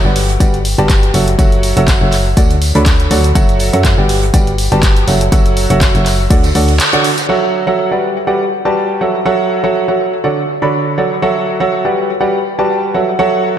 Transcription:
0.05 G1 G3 F#4 G4 B4 D5 F#5
0.16 open hi-hat
0.30 closed hi-hat
0.40 G1 G3 F#4 G4 B4 D5 F#5, kick, closed hi-hat, tambourine
0.54 closed hi-hat
0.65 open hi-hat, tambourine
0.78 G1 G3 F#4 G4 B4 D5 A5, snare, closed hi-hat
0.89 kick, snare, clap, closed hi-hat, tambourine
1.03 closed hi-hat
1.14 F#1 F#3 F#4 A4 C#5 E5 F#5, open hi-hat, tambourine
1.28 closed hi-hat
1.39 F#1 F#3 F#4 A4 C#5 E5 F#5, kick, closed hi-hat, tambourine
1.52 closed hi-hat
1.63 open hi-hat, tambourine
1.77 F#1 F#3 F#4 A4 C#5 E5 F#5, closed hi-hat
1.87 kick, snare, clap, closed hi-hat, tambourine
2.01 F#1 F#3 F#4 A4 C#5 E5 F#5
2.12 snare, clap, open hi-hat, tambourine
2.37 D2 D3 F#4 A4 C#5 D5 F#5, kick, closed hi-hat, tambourine
2.50 closed hi-hat
2.62 snare, open hi-hat, tambourine
2.75 D2 D3 F#4 A4 C#5 D5 B5, closed hi-hat
2.86 kick, snare, clap, closed hi-hat, tambourine
3.00 closed hi-hat
3.11 D2 F#3 F#4 A4 C#5 D5 F#5, open hi-hat, tambourine
3.24 snare, closed hi-hat
3.35 F#1 F#3 F#4 A4 C#5 E5 F#5, kick, closed hi-hat, tambourine
3.49 closed hi-hat
3.59 open hi-hat, tambourine
3.73 F#2 F#3 F#4 A4 C#5 E5 F#5, closed hi-hat
3.85 kick, snare, clap, closed hi-hat, tambourine
3.98 G1 G3 F#4 G4 B4 D5 F#5
4.09 open hi-hat
4.23 closed hi-hat
4.34 G1 G3 F#4 G4 B4 D5 F#5, kick, closed hi-hat, tambourine
4.47 closed hi-hat
4.58 open hi-hat, tambourine
4.72 G1 G3 F#4 G4 B4 D5 A5, snare, closed hi-hat
4.82 kick, snare, clap, closed hi-hat, tambourine
4.96 closed hi-hat
5.07 F#1 F#3 F#4 A4 C#5 E5 F#5, open hi-hat, tambourine
5.21 closed hi-hat
5.32 F#1 F#3 F#4 A4 C#5 E5 F#5, kick, closed hi-hat, tambourine
5.46 closed hi-hat
5.57 open hi-hat, tambourine
5.70 F#1 F#3 F#4 A4 C#5 E5 F#5, closed hi-hat
5.81 kick, snare, clap, closed hi-hat, tambourine
5.95 F#1 F#3 F#4 A4 C#5 E5 F#5, closed hi-hat
6.05 snare, clap, open hi-hat, tambourine
6.30 D2 D3 F#4 A4 C#5 D5 F#5, kick, snare, closed hi-hat, open hi-hat
6.43 snare, closed hi-hat, tambourine
6.55 D2 D3 F#4 A4 C#5 D5 F#5, open hi-hat
6.68 snare, closed hi-hat, open hi-hat
6.80 snare, clap, closed hi-hat, tambourine
6.93 D3 F#4 A4 C#5 D5 F#5, closed hi-hat
7.04 snare, open hi-hat
7.18 snare, closed hi-hat, tambourine
7.29 F#3 F#4 A4 C#5 E5 F#5, crash
7.67 F#3 F#4 A4 C#5 E5 F#5
7.77 tambourine
7.92 G3 F#4 G4 B4 D5 F#5
8.03 snare, open hi-hat
8.16 closed hi-hat
8.27 G3 F#4 G4 B4 D5 F#5, tambourine
8.52 tambourine
8.65 G3 F#4 G4 B4 D5 A5, snare
8.76 tambourine
9.01 F#3 F#4 A4 C#5 E5 F#5, tambourine
9.26 F#3 F#4 A4 C#5 E5 F#5, tambourine
9.51 tambourine
9.64 F#3 F#4 A4 C#5 E5 F#5
9.75 tambourine
9.88 F#3 F#4 A4 C#5 E5 F#5
9.99 snare, tambourine
10.24 D3 F#4 A4 C#5 D5 F#5, tambourine
10.37 closed hi-hat
10.48 snare, tambourine
10.62 D3 F#4 A4 C#5 D5 B5
10.72 tambourine
10.98 F#3 F#4 A4 C#5 D5 F#5, tambourine
11.12 snare
11.22 F#3 F#4 A4 C#5 E5 F#5, tambourine
11.47 tambourine
11.60 F#3 F#4 A4 C#5 E5 F#5
11.72 tambourine
11.85 G3 F#4 G4 B4 D5 F#5
11.96 snare, open hi-hat
12.10 closed hi-hat
12.21 G3 F#4 G4 B4 D5 F#5, tambourine
12.45 tambourine
12.58 G3 F#4 G4 B4 D5 A5, snare
12.69 tambourine
12.94 F#3 F#4 A4 C#5 E5 F#5, tambourine
13.18 F#3 F#4 A4 C#5 E5 F#5, tambourine
13.44 tambourine

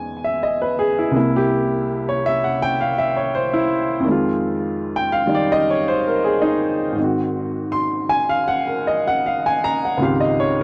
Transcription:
Already playing: E2 E3 G#3 D#4 G#5
0.24 E5
0.43 D#5
0.62 B4
0.79 G#4
0.99 E4
1.11 C2 C3 A#3
1.16 E4
1.36 G4
2.09 C#5
2.26 E5
2.44 F#5
2.62 G5
2.81 F5
2.98 E5
3.17 C#5
3.35 C5
3.53 E4
4.00 F2
4.05 D#3 G#3
4.11 F4
4.96 G5
5.12 F5
5.26 D#3 G3 D#4
5.35 D5
5.52 D#5
5.70 C#5
5.88 C5
6.07 A#4
6.24 G#4
6.42 D#4
6.92 G#2 D#3
7.00 C4
7.04 F#4
7.72 C6
8.09 G#5
8.29 F5
8.48 F#5
8.67 A#4
8.87 D#5
9.08 F#5
9.26 F5
9.46 G#5
9.64 A#5
9.85 F#5
9.97 C#2 G#2 D#3 C4 F4
10.02 G4 F5
10.20 D#5
10.40 C#5

